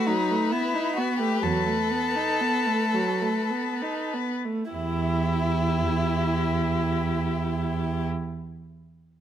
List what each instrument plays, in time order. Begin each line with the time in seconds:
Already playing: violin B4
0.07 viola F#3, violin D#4
0.31 viola A3
0.52 viola B3, violin E4
0.75 viola D#4
0.97 viola B3, violin F#4
1.19 viola A3, violin G4
1.43 cello E2, viola F#3, violin A4
1.67 viola A3
1.91 viola B3
2.16 viola D#4
2.41 viola B3
2.67 viola A3
2.94 viola F#3
3.21 viola A3
3.50 viola B3
3.82 viola D#4
4.14 viola B3
4.45 viola A3
4.71 cello E2, violin E4 G4, viola E4